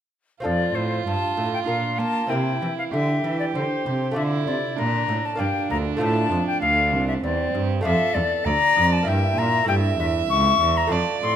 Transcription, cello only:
0.44 0.73 F2 medium
0.74 1.05 A2 medium
1.06 1.14 G2 medium
1.38 1.67 A2 medium
1.68 2.00 A#2 medium
1.99 2.30 A#3 medium
2.30 2.61 C3 medium
2.61 2.69 E3 medium
2.92 3.23 D3 medium
3.24 3.54 E3 medium
3.55 3.63 D3 medium
3.85 4.15 C3 medium
4.16 4.46 D3 medium
4.47 4.55 C3 medium
4.78 5.08 A#2 medium
5.09 5.17 A2 medium
5.40 5.48 G2 medium
5.70 6.00 D2 medium
6.01 6.30 A2 medium
6.31 6.39 F2 medium
6.62 6.94 D2 medium
6.93 7.23 C2 medium
7.24 7.54 E2 medium
7.54 7.84 G2 medium
7.85 7.93 F2 medium
8.15 8.23 E2 medium
8.46 8.54 D2 medium
8.76 9.06 F2 medium
9.07 9.37 G2 medium
9.38 9.68 A#2 medium
9.68 9.98 G2 medium
9.99 10.29 E2 medium
10.29 10.60 C#2 medium
10.60 10.90 E2 medium
10.91 10.99 F2 medium
11.23 11.36 A2 medium

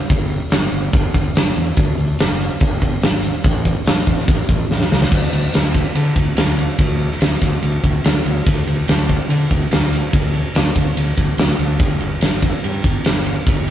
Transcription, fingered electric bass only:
0.10 0.39 G1 medium
0.53 0.67 G1 medium
0.73 0.87 G1 medium
0.94 1.08 G1 medium
1.14 1.29 G1 medium
1.35 1.50 G1 medium
1.56 1.70 E2 medium
1.77 1.91 D2 medium
1.98 2.12 D2 medium
2.19 2.48 F#1 medium
2.61 2.75 G1 medium
2.82 2.96 G1 medium
3.02 3.31 G#1 medium
3.44 3.73 A1 medium
3.87 4.01 A1 medium
4.07 4.21 A1 medium
4.28 4.42 A1 medium
4.49 4.63 A1 medium
4.70 4.84 A1 medium
4.91 5.05 C#2 medium
5.12 5.26 D2 medium
5.33 5.47 D2 medium
5.54 5.82 D2 medium
5.95 6.09 D3 medium
6.15 6.30 D2 medium
6.37 6.66 D2 medium
6.78 7.07 D2 medium
7.22 7.36 D2 medium
7.41 7.56 D2 medium
7.63 7.77 D2 medium
7.84 7.98 D2 medium
8.05 8.19 D2 medium
8.25 8.40 D2 medium
8.46 8.61 D2 medium
8.68 8.82 D2 medium
8.88 9.17 D2 medium
9.29 9.44 D3 medium
9.51 9.65 D2 medium
9.72 10.00 D2 medium
10.13 10.42 D2 medium
10.55 10.70 D2 medium
10.75 10.90 D2 medium
10.97 11.11 D2 medium
11.17 11.32 D2 medium
11.38 11.53 D2 medium
11.59 11.81 D2 medium
11.80 11.94 G1 medium
12.01 12.15 G1 medium
12.22 12.51 G1 medium
12.64 12.78 G2 medium
12.84 12.99 G1 medium
13.06 13.35 G1 medium
13.46 13.70 G1 medium

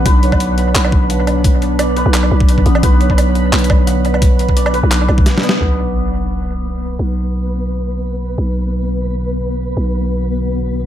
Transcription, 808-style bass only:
0.06 0.74 B1 loud
0.75 2.05 B1 medium
2.06 2.30 B1 loud
2.31 2.65 B1 loud
2.66 2.82 A1 loud
2.83 3.52 B1 loud
3.53 4.82 B1 medium
4.83 5.08 B1 loud
5.09 5.26 B1 loud
5.61 6.98 B1 medium
6.99 8.36 B1 medium
8.38 9.75 B1 medium
9.77 10.86 B1 medium

